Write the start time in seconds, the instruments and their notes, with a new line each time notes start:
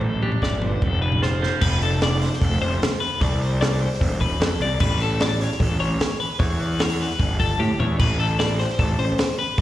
Already playing: picked electric bass A1, clean electric guitar A2
0.01 clean electric guitar A4, floor tom
0.22 clean electric guitar D4 G4, mid tom
0.32 floor tom
0.42 picked electric bass G1, clean electric guitar A2 D5, kick, snare
0.62 clean electric guitar G2 C5, floor tom, mid tom
0.82 picked electric bass F1, clean electric guitar F2 A4, kick, floor tom
1.02 clean electric guitar B4
1.12 floor tom
1.22 clean electric guitar F4 C5, snare
1.42 clean electric guitar F3 C5, snare
1.61 picked electric bass F1, clean electric guitar B4, kick, crash
1.82 clean electric guitar A4, open hi-hat
2.01 clean electric guitar D5, snare, open hi-hat
2.21 clean electric guitar C5, snare, open hi-hat
2.33 snare
2.41 picked electric bass F1, clean electric guitar A4, kick, open hi-hat
2.61 picked electric bass F1, clean electric guitar C5, open hi-hat
2.82 snare, open hi-hat
3.00 clean electric guitar B4, open hi-hat
3.21 picked electric bass C2, clean electric guitar D5, kick, open hi-hat
3.41 clean electric guitar C5, open hi-hat
3.61 clean electric guitar D5, snare, open hi-hat
3.81 clean electric guitar C5, open hi-hat
3.94 snare
4.01 picked electric bass E1, kick, open hi-hat
4.21 clean electric guitar B4, kick, open hi-hat
4.40 picked electric bass F2, clean electric guitar A4, snare, open hi-hat
4.60 picked electric bass C2, clean electric guitar D5, open hi-hat
4.80 picked electric bass A1, clean electric guitar B4, kick, crash
5.00 clean electric guitar A4, open hi-hat
5.20 clean electric guitar D5, snare, open hi-hat
5.41 clean electric guitar C#5, snare, open hi-hat
5.52 snare
5.60 picked electric bass A1, clean electric guitar A4, kick, open hi-hat
5.79 picked electric bass A1, clean electric guitar C#5, open hi-hat
6.00 snare, open hi-hat
6.20 clean electric guitar B4, open hi-hat
6.39 picked electric bass E2, clean electric guitar C#5, kick, open hi-hat
6.60 clean electric guitar B4, open hi-hat
6.79 clean electric guitar C#5, snare, open hi-hat
7.00 clean electric guitar B4, snare, open hi-hat
7.11 snare
7.19 picked electric bass G1, kick, open hi-hat
7.40 clean electric guitar A4, kick, open hi-hat
7.59 picked electric bass A2, clean electric guitar G4, high tom
7.79 picked electric bass E2, clean electric guitar C#5, floor tom
7.99 picked electric bass A1, clean electric guitar B4, kick, crash
8.19 clean electric guitar A4, open hi-hat
8.39 clean electric guitar D5, snare, open hi-hat
8.59 clean electric guitar C5, snare, open hi-hat
8.70 snare
8.79 picked electric bass A1, clean electric guitar A4, kick, open hi-hat
8.98 picked electric bass A1, clean electric guitar C5, open hi-hat
9.18 snare, open hi-hat
9.38 clean electric guitar B4, open hi-hat
9.58 picked electric bass A1, kick, open hi-hat